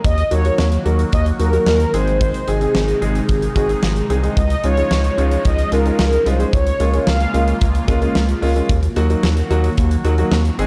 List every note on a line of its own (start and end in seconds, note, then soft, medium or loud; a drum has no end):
0.04 0.23 D#2 medium
0.04 4.33 D#3 medium
0.04 1.92 F#3 medium
0.04 1.92 A#3 medium
0.04 1.92 F#4 medium
0.04 0.33 D#5 loud
0.04 kick loud
0.04 closed hi-hat medium
0.18 closed hi-hat medium
0.31 0.51 D#2 loud
0.31 0.40 F#3 medium
0.31 0.40 A#3 medium
0.31 0.40 D#4 medium
0.31 0.39 F#4 medium
0.31 0.82 C#5 loud
0.31 closed hi-hat medium
0.45 0.61 F#3 medium
0.45 0.61 A#3 medium
0.45 0.61 D#4 medium
0.45 0.61 F#4 medium
0.45 closed hi-hat medium
0.58 0.78 D#2 loud
0.58 snare loud
0.72 closed hi-hat medium
0.85 1.04 D#2 loud
0.85 1.02 F#3 medium
0.85 1.02 A#3 medium
0.85 1.02 D#4 medium
0.85 1.02 F#4 medium
0.85 closed hi-hat medium
0.99 closed hi-hat medium
1.12 1.32 D#2 loud
1.12 1.25 D#5 loud
1.12 kick loud
1.12 closed hi-hat medium
1.26 closed hi-hat medium
1.39 1.59 D#2 medium
1.39 1.48 F#3 medium
1.39 1.48 A#3 medium
1.39 1.48 D#4 medium
1.39 1.48 F#4 medium
1.39 1.66 A#4 loud
1.39 closed hi-hat medium
1.53 1.69 F#3 medium
1.53 1.69 A#3 medium
1.53 1.69 D#4 medium
1.53 1.69 F#4 medium
1.53 closed hi-hat soft
1.66 1.86 D#2 loud
1.66 1.95 A#4 loud
1.66 snare loud
1.80 closed hi-hat medium
1.94 2.31 G#1 loud
1.94 4.35 C3 medium
1.94 2.37 G#3 medium
1.94 4.35 G#3 medium
1.94 2.37 C4 medium
1.94 6.49 D#4 medium
1.94 2.37 D#4 medium
1.94 2.37 G#4 medium
1.94 2.20 C5 medium
1.94 closed hi-hat medium
2.07 closed hi-hat soft
2.21 2.49 C5 loud
2.21 kick loud
2.21 closed hi-hat medium
2.34 closed hi-hat medium
2.48 2.67 G#1 loud
2.48 2.56 G#3 medium
2.48 2.56 C4 medium
2.48 2.56 D#4 medium
2.48 2.56 G#4 medium
2.48 3.28 G#4 loud
2.48 closed hi-hat medium
2.61 2.78 G#3 medium
2.61 2.78 C4 medium
2.61 2.78 D#4 medium
2.61 2.78 G#4 medium
2.61 closed hi-hat medium
2.75 2.94 G#1 loud
2.75 snare loud
2.88 closed hi-hat medium
3.02 3.21 G#1 loud
3.02 3.18 G#3 medium
3.02 3.18 C4 medium
3.02 3.18 D#4 medium
3.02 3.18 G#4 medium
3.02 closed hi-hat medium
3.15 closed hi-hat medium
3.29 3.48 G#1 loud
3.29 3.55 G#4 medium
3.29 kick loud
3.29 closed hi-hat medium
3.42 closed hi-hat medium
3.56 3.75 G#1 medium
3.56 3.64 G#3 medium
3.56 3.64 C4 medium
3.56 3.64 D#4 medium
3.56 3.64 F#4 medium
3.56 4.06 G#4 medium
3.56 kick loud
3.56 closed hi-hat medium
3.69 3.86 G#3 medium
3.69 3.86 C4 medium
3.69 3.86 D#4 medium
3.69 3.86 G#4 medium
3.69 closed hi-hat soft
3.83 4.02 G#1 loud
3.83 snare loud
3.96 closed hi-hat medium
4.10 4.29 C2 medium
4.10 4.18 G#3 medium
4.10 4.18 C4 medium
4.10 4.18 D#4 medium
4.10 4.18 G#4 medium
4.10 closed hi-hat medium
4.23 4.37 G#3 medium
4.23 4.37 C4 medium
4.23 4.37 D#4 medium
4.23 4.37 G#4 medium
4.23 closed hi-hat medium
4.37 4.56 C#2 loud
4.37 6.51 C#3 medium
4.37 6.51 F3 medium
4.37 6.51 G#3 medium
4.37 4.65 D#5 loud
4.37 kick loud
4.37 closed hi-hat medium
4.50 closed hi-hat medium
4.64 4.83 C#2 loud
4.64 4.72 G#3 medium
4.64 4.72 C#4 medium
4.64 4.72 D#4 medium
4.64 4.72 F4 medium
4.64 5.48 C#5 loud
4.64 closed hi-hat medium
4.77 4.94 G#3 medium
4.77 4.94 C#4 medium
4.77 4.94 D#4 medium
4.77 4.94 F4 medium
4.77 closed hi-hat medium
4.91 5.10 C#2 loud
4.91 snare loud
5.04 closed hi-hat medium
5.18 5.37 C#2 loud
5.18 5.34 G#3 medium
5.18 5.34 C#4 medium
5.18 5.34 D#4 medium
5.18 5.34 F4 medium
5.18 closed hi-hat medium
5.31 closed hi-hat medium
5.45 5.64 C#2 loud
5.45 5.70 D#5 loud
5.45 kick loud
5.45 closed hi-hat medium
5.58 closed hi-hat medium
5.72 5.91 C#2 loud
5.72 5.80 G#3 medium
5.72 5.80 C#4 medium
5.72 5.80 D#4 medium
5.72 5.80 F4 medium
5.72 5.98 A#4 medium
5.72 closed hi-hat medium
5.85 6.02 G#3 medium
5.85 6.02 C#4 medium
5.85 6.02 D#4 medium
5.85 6.02 F4 medium
5.85 closed hi-hat soft
5.99 6.18 C#2 loud
5.99 6.27 A#4 medium
5.99 snare loud
6.12 closed hi-hat medium
6.26 6.45 C2 medium
6.26 6.34 G#3 medium
6.26 6.34 C#4 medium
6.26 6.34 D#4 medium
6.26 6.34 F4 medium
6.26 6.51 C5 medium
6.26 closed hi-hat medium
6.39 6.53 G#3 medium
6.39 6.53 C#4 medium
6.39 6.53 D#4 medium
6.39 6.53 G#4 medium
6.39 closed hi-hat soft
6.53 6.72 C#2 loud
6.53 8.67 C#3 medium
6.53 8.67 G#3 medium
6.53 8.67 A#3 medium
6.53 8.67 F4 medium
6.53 7.09 C#5 loud
6.53 kick loud
6.53 closed hi-hat medium
6.67 closed hi-hat medium
6.80 6.99 C#2 loud
6.80 6.88 G#3 medium
6.80 6.88 A#3 medium
6.80 6.88 C#4 medium
6.80 6.88 F4 medium
6.80 closed hi-hat medium
6.93 7.10 G#3 medium
6.93 7.10 A#3 medium
6.93 7.10 C#4 medium
6.93 7.10 F4 medium
6.93 closed hi-hat medium
7.07 7.26 C#2 medium
7.07 7.85 F5 loud
7.07 snare loud
7.20 closed hi-hat medium
7.34 7.53 C#2 loud
7.34 7.50 G#3 medium
7.34 7.50 A#3 medium
7.34 7.50 C#4 medium
7.34 7.50 F4 medium
7.34 closed hi-hat medium
7.48 closed hi-hat medium
7.61 7.80 C#2 loud
7.61 kick loud
7.61 closed hi-hat medium
7.75 closed hi-hat medium
7.88 8.07 C#2 loud
7.88 7.96 G#3 medium
7.88 7.96 A#3 medium
7.88 7.96 C#4 medium
7.88 7.96 F4 loud
7.88 kick loud
7.88 closed hi-hat medium
8.02 8.18 G#3 medium
8.02 8.18 A#3 medium
8.02 8.18 C#4 medium
8.02 8.18 F4 medium
8.02 closed hi-hat medium
8.15 8.34 C#2 loud
8.15 snare loud
8.29 closed hi-hat medium
8.42 8.61 C#2 medium
8.42 8.50 G#3 medium
8.42 8.50 A#3 medium
8.42 8.50 C#4 medium
8.42 8.50 F4 loud
8.42 open hi-hat medium
8.56 8.69 G#3 medium
8.56 8.69 A#3 medium
8.56 8.69 C#4 medium
8.56 8.69 F4 medium
8.56 closed hi-hat soft
8.69 8.88 D#2 loud
8.69 10.57 D#3 medium
8.69 10.57 F#3 medium
8.69 10.57 A#3 medium
8.69 10.57 F#4 medium
8.69 kick loud
8.69 closed hi-hat medium
8.83 closed hi-hat medium
8.96 9.15 D#2 loud
8.96 9.05 F#3 medium
8.96 9.05 A#3 medium
8.96 9.05 D#4 medium
8.96 9.05 F#4 loud
8.96 closed hi-hat medium
9.10 9.26 F#3 medium
9.10 9.26 A#3 medium
9.10 9.26 D#4 medium
9.10 9.26 F#4 medium
9.10 closed hi-hat medium
9.23 9.42 D#2 loud
9.23 snare loud
9.37 closed hi-hat medium
9.50 9.69 D#2 loud
9.50 9.67 F#3 medium
9.50 9.67 A#3 medium
9.50 9.67 D#4 medium
9.50 9.67 F#4 loud
9.50 closed hi-hat medium
9.64 closed hi-hat medium
9.77 9.97 D#2 loud
9.77 kick medium
9.77 closed hi-hat medium
9.91 closed hi-hat medium
10.04 10.23 D#2 loud
10.04 10.13 F#3 medium
10.04 10.13 A#3 medium
10.04 10.13 D#4 medium
10.04 10.13 F#4 loud
10.04 closed hi-hat medium
10.18 10.34 F#3 medium
10.18 10.35 A#3 medium
10.18 10.35 D#4 medium
10.18 10.34 F#4 medium
10.18 closed hi-hat soft
10.31 10.50 D#2 loud
10.31 snare loud
10.45 closed hi-hat medium
10.58 10.67 G#1 loud
10.58 10.67 C3 medium
10.58 10.67 D#3 medium
10.58 10.67 G#3 loud
10.58 10.67 G#3 medium
10.58 10.67 C4 medium
10.58 10.67 D#4 medium
10.58 10.67 G#4 loud
10.58 closed hi-hat medium